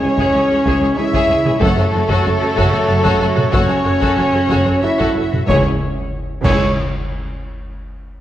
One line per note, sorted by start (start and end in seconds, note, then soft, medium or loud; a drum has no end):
0.00 0.08 C#2 medium
0.00 1.57 E3 medium
0.00 1.57 G#3 medium
0.00 0.97 C#4 loud
0.00 0.08 G#4 medium
0.00 0.10 G#4 medium
0.00 0.95 C#5 loud
0.00 0.98 C#5 loud
0.00 1.57 C#5 medium
0.00 0.09 C#5 medium
0.17 0.24 C#2 loud
0.17 0.33 G#4 loud
0.17 0.32 C#5 medium
0.17 0.32 E5 medium
0.17 taiko medium
0.33 0.40 C#2 medium
0.33 0.41 G#4 medium
0.33 0.40 C#5 medium
0.33 0.40 E5 medium
0.50 0.56 C#2 medium
0.50 0.57 G#4 medium
0.50 0.57 C#5 medium
0.65 0.71 C#2 loud
0.65 0.72 C#2 loud
0.65 0.80 G#4 loud
0.65 0.81 C#5 loud
0.65 0.81 E5 loud
0.65 taiko medium
0.80 0.87 C#2 medium
0.80 0.88 G#4 medium
0.80 0.89 C#5 medium
0.80 0.88 E5 medium
0.96 1.03 C#2 medium
0.96 1.04 C#2 medium
0.96 1.61 E4 loud
0.96 1.04 G#4 medium
0.96 1.05 C#5 medium
0.96 1.59 E5 loud
0.96 1.60 E5 loud
1.11 1.18 C#2 loud
1.11 1.28 G#4 loud
1.11 1.28 C#5 loud
1.11 1.28 E5 loud
1.11 taiko medium
1.28 1.35 C#2 medium
1.28 1.36 C#2 medium
1.28 1.36 G#4 medium
1.28 1.37 C#5 medium
1.28 1.37 E5 medium
1.44 1.51 C#2 medium
1.44 1.52 G#4 medium
1.44 1.53 G#4 medium
1.44 1.52 C#5 medium
1.44 taiko mid medium
1.60 1.67 F#1 loud
1.60 1.68 F#2 loud
1.60 5.16 C#3 medium
1.60 5.12 F#3 medium
1.60 3.49 A3 loud
1.60 1.75 F#4 loud
1.60 1.75 A4 loud
1.60 3.50 A4 loud
1.60 3.26 A4 loud
1.60 5.12 C#5 medium
1.60 1.77 C#5 loud
1.60 1.77 F#5 loud
1.60 taiko loud
1.77 1.83 F#2 medium
1.77 1.83 F#4 medium
1.77 1.83 A4 medium
1.77 1.86 C#5 medium
1.77 1.85 F#5 medium
1.93 2.00 F#1 medium
1.93 1.99 F#2 medium
1.93 1.99 F#4 medium
1.93 1.99 A4 medium
1.93 2.01 A4 medium
1.93 2.01 C#5 medium
2.07 2.16 F#2 loud
2.07 2.22 F#4 loud
2.07 2.23 A4 loud
2.07 2.25 C#5 loud
2.07 2.25 F#5 loud
2.07 taiko medium
2.23 2.32 F#1 medium
2.23 2.31 F#2 medium
2.23 2.30 F#4 medium
2.23 2.30 A4 medium
2.23 2.32 C#5 medium
2.23 2.33 F#5 medium
2.40 2.47 F#2 medium
2.40 2.47 F#4 medium
2.40 2.47 A4 medium
2.40 2.49 A4 medium
2.40 2.48 C#5 medium
2.55 2.64 F#1 loud
2.55 2.63 F#2 loud
2.55 2.70 F#4 loud
2.55 2.70 A4 loud
2.55 2.72 C#5 loud
2.55 2.72 F#5 loud
2.55 taiko medium
2.71 2.79 F#2 medium
2.71 2.78 F#4 medium
2.71 2.78 A4 medium
2.71 2.79 C#5 medium
2.71 2.79 F#5 medium
2.86 2.96 F#1 medium
2.86 2.95 F#2 medium
2.86 2.93 F#4 medium
2.86 2.93 A4 medium
2.86 2.95 A4 medium
2.86 2.95 C#5 medium
3.03 3.11 F#2 loud
3.03 3.18 F#4 loud
3.03 3.18 A4 loud
3.03 3.19 C#5 loud
3.03 3.19 F#5 loud
3.03 taiko loud
3.20 3.28 F#1 medium
3.20 3.27 F#2 medium
3.20 3.26 F#4 loud
3.20 3.26 A4 medium
3.20 3.27 C#5 loud
3.20 3.27 F#5 medium
3.35 3.43 F#2 medium
3.35 3.42 F#4 loud
3.35 3.42 A4 medium
3.35 3.43 A4 medium
3.35 3.43 C#5 medium
3.35 taiko mid medium
3.51 3.60 F#1 loud
3.51 3.59 F#2 loud
3.51 4.80 C#4 loud
3.51 3.67 F#4 loud
3.51 3.68 A4 loud
3.51 3.68 C#5 loud
3.51 4.80 C#5 loud
3.51 4.81 C#5 loud
3.51 3.68 F#5 loud
3.51 taiko loud
3.69 3.75 F#2 medium
3.69 3.75 F#4 medium
3.69 3.75 A4 medium
3.69 3.76 C#5 medium
3.69 3.76 F#5 medium
3.84 3.93 F#1 medium
3.84 3.92 F#2 medium
3.84 3.91 F#4 medium
3.84 3.91 A4 medium
3.84 3.92 C#5 medium
3.99 4.07 F#2 loud
3.99 4.16 F#4 loud
3.99 4.16 A4 loud
3.99 4.15 C#5 loud
3.99 4.15 F#5 loud
3.99 taiko medium
4.17 4.25 F#1 medium
4.17 4.24 F#2 medium
4.17 4.24 F#4 medium
4.17 4.24 A4 medium
4.17 4.24 C#5 medium
4.17 4.23 F#5 medium
4.32 4.39 F#2 medium
4.32 4.40 F#4 medium
4.32 4.39 A4 medium
4.32 4.41 A4 medium
4.32 4.39 C#5 medium
4.48 4.56 F#1 loud
4.48 4.55 F#2 loud
4.48 4.65 F#4 loud
4.48 4.65 A4 loud
4.48 4.64 C#5 loud
4.48 4.64 F#5 loud
4.48 taiko medium
4.65 4.72 F#2 medium
4.65 4.73 F#4 medium
4.65 4.73 A4 medium
4.65 4.72 C#5 medium
4.65 4.72 F#5 medium
4.79 4.89 F#1 medium
4.79 4.89 F#2 medium
4.79 4.89 F#4 medium
4.79 4.87 A4 medium
4.79 4.89 A4 medium
4.79 4.87 C#5 medium
4.79 5.47 E5 medium
4.83 5.31 E4 loud
4.83 5.49 E5 loud
4.96 5.05 F#2 loud
4.96 5.14 F#4 loud
4.96 5.14 A4 loud
4.96 5.11 C#5 medium
4.96 5.11 F#5 loud
5.00 taiko medium
5.13 5.22 F#1 medium
5.13 5.22 F#2 medium
5.13 5.22 F#4 medium
5.13 5.23 A4 medium
5.13 5.20 C#5 medium
5.13 5.20 F#5 medium
5.31 5.38 F#2 medium
5.31 5.39 F#4 medium
5.31 5.38 A4 medium
5.31 5.39 A4 medium
5.31 5.38 C#5 medium
5.31 taiko mid medium
5.47 5.66 C#2 loud
5.47 5.66 C#3 loud
5.47 5.77 E3 medium
5.47 5.76 G#3 medium
5.47 5.76 C#4 loud
5.47 5.67 E4 medium
5.47 5.67 G#4 medium
5.47 5.66 C#5 loud
5.47 5.62 C#5 loud
5.47 5.66 G#5 loud
5.47 concert bass drum medium
5.47 snare medium
5.47 taiko loud
6.44 6.80 C#2 loud
6.44 6.81 C#2 loud
6.44 6.75 C#3 loud
6.44 6.81 E4 medium
6.44 6.81 G#4 medium
6.44 6.73 C#5 medium
6.44 6.81 C#5 medium
6.44 6.81 C#5 loud
6.44 6.82 C#5 medium
6.44 6.81 G#5 loud
6.44 concert bass drum medium
6.44 taiko loud
6.44 crash medium